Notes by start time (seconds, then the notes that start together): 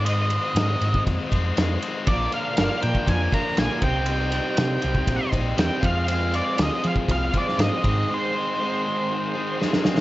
Already playing: G#2
0.02 G#2 D#3 G#3 C4 D#4 D#5, ride
0.29 G#3 C4 D#4, ride
0.54 G#2 D#3 G#3 C4 D#4, snare, ride
0.81 G#2, ride
0.94 kick
1.07 F2, kick, ride
1.30 F2 G#3 C4 D#4, kick, ride
1.56 F2 D#3 G#3 C4 D#4, snare, ride
1.81 G#3 C4 D#4, ride
2.06 A#1 A#2 D3 F3 A#3 D4 A#4 D5, kick, ride
2.31 F3 A#3 D4 A#4 F5, ride
2.56 G1 A#2 D3 F3 A#3 D4 A#4 F5, snare, ride
2.81 A#2 D3 F3 A#3 D4 A#4 G5, ride
2.95 kick
3.06 F2 F3 A#3 D4 A#4 G#5, kick, ride
3.32 A#2 D3 F3 A#3 D4 A#4 A#5, kick, ride
3.56 A#1 D3 F3 A#3 D4 A#4 G#5, snare, ride
3.81 C2 C3 G3 C4 D#4 G4 G5, kick, ride
4.06 C3 G3 C4 D#4 G4, ride
4.32 G3 C4 D#4 G4, ride
4.56 C3 G3 C4 D#4 G4, snare, ride
4.81 C2 C3 G3 C4 D#4 G4, ride
4.95 kick
5.05 A#1 G3 C4 D#4 G4, kick, ride
5.32 A#1 C3 G3 C4 D#4 G4, kick, ride
5.55 E2 C3 G3 C4 D#4, snare, ride
5.60 G4 G5
5.81 F2 F3 G#3 C4 F4 G#4 F5, kick, ride
6.07 F3 G#3 C4 F4 G#4, ride
6.33 G#3 C4 F4 G#4 D5, ride
6.58 D2 F3 G#3 C4 F4 G#4, snare, ride
6.63 D#5
6.82 F3 C4 F4 G#4, ride
6.88 F5
6.96 kick
7.08 C2 F3 C4 F4 G#4 F5, kick, ride
7.34 F3 G#3 C4 F4 G#4, kick, ride
7.38 D5
7.49 snare
7.58 G#2 F3 G#3 C4 F4 G#4 D#5, snare, ride
7.83 G#2 D#3 G#3 C4 D#4 G#4, kick, ride
8.09 G#2 D#3 G#3 C4 D#4 G#4
8.14 C5
8.33 G#3 C4 D#4 G#4
8.58 G#2 D#3 G#3 C4 D#4 G#4
8.85 G#2 D#3 G#3 C4 D#4 G#4
9.09 G#3 C4 D#4 G#4
9.34 G#2 D#3 G#3 C4 D#4 G#4
9.57 D#3 G#3 C4
9.61 D#4 G#4, snare
9.73 snare
9.84 G#3 C4 D#4 G#4, snare
9.97 snare